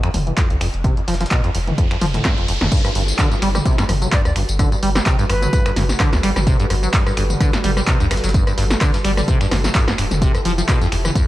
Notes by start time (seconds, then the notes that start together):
Already playing: riser
0.03 F2, finger snap, closed hi-hat
0.14 F1 E2, closed hi-hat, open hi-hat, mid tom
0.27 E3, closed hi-hat
0.37 F2, kick, snare, clap, closed hi-hat
0.50 C2 F2, closed hi-hat
0.61 F1 F2, finger snap, open hi-hat
0.74 F1, closed hi-hat
0.84 C3, kick, closed hi-hat
0.97 F2, closed hi-hat
1.08 F1 F3, snare, closed hi-hat, open hi-hat
1.14 snare, closed hi-hat
1.21 F3, snare, closed hi-hat
1.26 snare, closed hi-hat
1.31 B2, kick, snare, clap, closed hi-hat
1.44 F2, closed hi-hat
1.55 F1 E2, closed hi-hat, open hi-hat
1.67 E3, closed hi-hat, mid tom
1.78 F2, kick, closed hi-hat
1.91 F2, finger snap, snare, closed hi-hat
2.01 F1 F3, snare, closed hi-hat, open hi-hat, mid tom
2.14 A2, snare, closed hi-hat, mid tom
2.25 G2, kick, snare, clap, closed hi-hat
2.38 F1 F2, closed hi-hat
2.48 F1 F2, closed hi-hat, open hi-hat
2.61 F1 F2, snare, closed hi-hat, mid tom
2.72 G2 G3 F#4 A4 B4, kick, closed hi-hat, crash, tambourine, downlifter
2.85 G2, cross-stick, closed hi-hat, tambourine
2.95 G1 G2, closed hi-hat, open hi-hat
3.08 closed hi-hat, tambourine
3.19 D3, kick, cross-stick, snare, clap, closed hi-hat, tambourine
3.31 G2, snare, closed hi-hat, tambourine
3.42 G1 G3, finger snap, closed hi-hat, open hi-hat
3.55 G3, cross-stick, closed hi-hat, mid tom, tambourine
3.65 C3, kick, closed hi-hat, tambourine
3.78 G2, finger snap, snare, closed hi-hat, tambourine
3.89 G1 F#2, cross-stick, closed hi-hat, open hi-hat, mid tom
4.02 F#3, closed hi-hat, tambourine
4.12 G2 D5, kick, snare, clap, closed hi-hat, tambourine
4.25 D2 G2 D5, cross-stick, closed hi-hat, tambourine
4.36 G1 G2, finger snap, open hi-hat
4.49 G1, closed hi-hat, tambourine
4.59 D3, kick, cross-stick, closed hi-hat, tambourine
4.72 G2, closed hi-hat, tambourine
4.83 G1 G3, closed hi-hat, open hi-hat
4.95 G3, cross-stick, snare, tambourine
5.06 C3, kick, snare, clap, closed hi-hat, tambourine
5.19 G2, closed hi-hat, tambourine
5.29 G1 F#2 B4, finger snap, cross-stick, closed hi-hat, open hi-hat
5.42 F#3, closed hi-hat, mid tom, tambourine
5.53 G2, kick, closed hi-hat, tambourine
5.66 G2, finger snap, cross-stick, snare, closed hi-hat, tambourine
5.76 G1 G2, snare, closed hi-hat, open hi-hat, mid tom
5.89 snare, closed hi-hat, tambourine
6.00 D3, kick, cross-stick, snare, clap, closed hi-hat, tambourine
6.13 D2 G2, snare, closed hi-hat, tambourine
6.23 G1 G3, finger snap, closed hi-hat, open hi-hat
6.36 G1 G3, cross-stick, snare, mid tom, tambourine
6.47 C3, kick, closed hi-hat, tambourine
6.60 G2, closed hi-hat, tambourine
6.70 G1 F#2, cross-stick, closed hi-hat, open hi-hat
6.83 F#3, closed hi-hat, tambourine
6.94 G2, kick, snare, clap, closed hi-hat, tambourine
7.06 G2, cross-stick, snare, closed hi-hat, tambourine
7.17 G1 G2, finger snap, closed hi-hat, open hi-hat
7.30 closed hi-hat, mid tom, tambourine
7.41 D3, kick, cross-stick, closed hi-hat, tambourine
7.53 G2, finger snap, snare, closed hi-hat, tambourine
7.64 G1 G3, closed hi-hat, open hi-hat, mid tom
7.77 G3, cross-stick, closed hi-hat, tambourine
7.87 C3, kick, snare, clap, closed hi-hat, tambourine
8.00 D2 G2, closed hi-hat, tambourine
8.11 G1 F#2, finger snap, cross-stick, snare, closed hi-hat, open hi-hat
8.17 snare, closed hi-hat
8.24 G1 F#3, snare, closed hi-hat, tambourine
8.29 snare, closed hi-hat
8.34 G2, kick, closed hi-hat, tambourine
8.47 G2, cross-stick, closed hi-hat, tambourine
8.58 G1 G2, snare, closed hi-hat, open hi-hat
8.71 snare, closed hi-hat, tambourine
8.81 D3, kick, cross-stick, clap, closed hi-hat, open hi-hat, tambourine
8.94 G2, snare, closed hi-hat, tambourine
9.05 G1 G3, finger snap, closed hi-hat, open hi-hat
9.17 G3, cross-stick, open hi-hat, mid tom, tambourine
9.28 C3, kick, closed hi-hat, tambourine
9.41 G2, finger snap, snare, closed hi-hat, tambourine
9.51 G1 F#2, cross-stick, snare, closed hi-hat, open hi-hat, mid tom
9.64 F#3, snare, closed hi-hat, tambourine
9.75 G2, kick, snare, clap, closed hi-hat, tambourine
9.88 G1 G2, cross-stick, snare, closed hi-hat, tambourine
9.98 D1 G2, finger snap, closed hi-hat, open hi-hat
10.11 F1, snare, closed hi-hat, mid tom, tambourine
10.22 C3 F3 E4 G4, kick, closed hi-hat, tambourine
10.35 F2, cross-stick, closed hi-hat, tambourine
10.45 F1 F3, closed hi-hat, open hi-hat
10.58 F3, closed hi-hat, tambourine
10.69 B2, kick, cross-stick, snare, clap, closed hi-hat, tambourine
10.81 F2, snare, closed hi-hat, tambourine
10.92 F1 E2, finger snap, closed hi-hat, open hi-hat
11.05 E3, cross-stick, closed hi-hat, mid tom, tambourine
11.15 F2, kick, closed hi-hat, tambourine